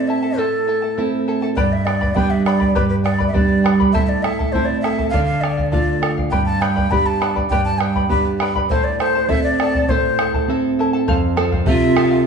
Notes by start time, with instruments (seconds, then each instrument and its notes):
Already playing: nylon-string guitar A2 C4 E4 A4
0.00 quena D5
0.08 charango E4 A4 E5 A5, quena E5
0.23 charango E4 A4 A5
0.37 nylon-string guitar A2, charango E4 A4 C5 E5 A5, quena A4
0.68 charango E4 A4 E5 A5
0.82 charango E4 A4 A5
0.97 nylon-string guitar A3 C4 E4, charango E4 A4 E5 A5
1.28 charango E4 A4 E5 A5
1.42 charango E4 A4 A5
1.56 nylon-string guitar G2, charango G4 B4 D5 G5 B5, quena D5, bombo low
1.73 quena E5
1.85 charango B4 D5 G5 B5, quena D5, bombo rim
2.01 charango B4 D5 B5, bombo low
2.15 nylon-string guitar G3 B3 D4, charango B4 D5 G5 B5, quena G5, bombo low
2.30 quena E5
2.45 charango B4 D5 G5 B5, quena D5, bombo rim
2.60 charango B4 D5 B5, bombo low
2.75 nylon-string guitar G2, charango G4 B4 D5 G5 B5, quena B4, bombo low
2.89 quena B4
3.04 charango B4 D5 G5 B5, quena D5, bombo rim
3.19 charango B4 D5 B5, bombo low
3.28 quena E5
3.34 nylon-string guitar G3 B3 D4, charango B4 D5 G5 B5, quena D5, bombo low
3.64 charango B4 D5 G5 B5, bombo rim
3.80 charango B4 D5 B5, bombo low
3.93 nylon-string guitar A2, charango E4 A4 C5 E5 A5, quena E5, bombo low
4.06 quena D5 E5
4.23 charango E4 A4 E5 A5, quena E5, bombo rim
4.39 charango E4 A4 A5, bombo low
4.52 nylon-string guitar A3 C4 E4, charango E4 A4 E5 A5, quena C5, bombo low
4.65 quena D5
4.81 charango E4 E5, quena E5, bombo rim
4.85 charango A4 A5
4.99 charango E4 A4 A5, bombo low
5.10 nylon-string guitar D3, charango A4, quena F5
5.14 charango D5 F5, bombo low
5.25 quena F5
5.41 charango A4 D5 F5, quena D5, bombo rim
5.57 charango D5 F5, bombo low
5.71 nylon-string guitar A3 D4 F4, charango A4 D5 F5, quena D5, bombo low
6.02 charango A4 D5 F5, bombo rim
6.17 charango D5 F5, bombo low
6.31 nylon-string guitar G2, charango G4 B4 D5 G5 B5, quena G5, bombo low
6.46 quena A5
6.61 charango B4 D5 G5 B5, quena G5, bombo rim
6.76 charango B4 D5 B5, bombo low
6.91 nylon-string guitar B3 D4 G4, charango B4 D5 G5 B5, quena B5, bombo low
7.06 quena A5
7.21 charango B4 D5 G5 B5, bombo rim
7.36 charango B4 D5 B5, bombo low
7.50 nylon-string guitar G2, charango G4 B4 D5 G5 B5, quena G5, bombo low
7.65 quena A5
7.79 charango B4 D5 G5 B5, quena G5, bombo rim
7.95 charango B4 D5 B5, bombo low
8.09 nylon-string guitar B3 D4 G4, charango B4 D5 G5 B5, quena B5, bombo low
8.40 charango B4 D5 G5 B5, bombo rim
8.55 charango B4 D5 B5, bombo low
8.69 nylon-string guitar A2, charango E4 A4 C5 E5 A5, quena C5, bombo low
8.84 quena D5
8.99 charango E4 A4 E5 A5, quena C5, bombo rim
9.15 charango E4 A4 A5
9.28 nylon-string guitar C4 E4 A4, charango E4 A4 E5, quena E5, bombo low
9.32 charango A5
9.43 quena D5
9.60 charango E4 A4 E5 A5, bombo rim
9.75 charango E4 A4 A5, bombo low
9.89 nylon-string guitar A2, charango E4 A4 C5 E5 A5, quena C5, bombo low
10.19 charango E4 A4 E5 A5, bombo rim
10.34 charango E4 A4 A5, bombo low
10.48 nylon-string guitar C4 E4 A4, charango E4 A4 E5 A5
10.79 charango E4 A4 E5 A5
10.93 charango E4 A4 A5
11.08 nylon-string guitar F2, charango A4 C5 F5, bombo low
11.37 nylon-string guitar C4 F4 A4, charango A4 C5 F5, bombo rim
11.52 charango C5 F5, bombo low
11.66 nylon-string guitar C3, pan flute F4, charango A4 C5 F5, quena E5, bombo low
11.96 nylon-string guitar C4 F4 A4, charango A4 C5 F5, bombo rim
12.11 charango C5 F5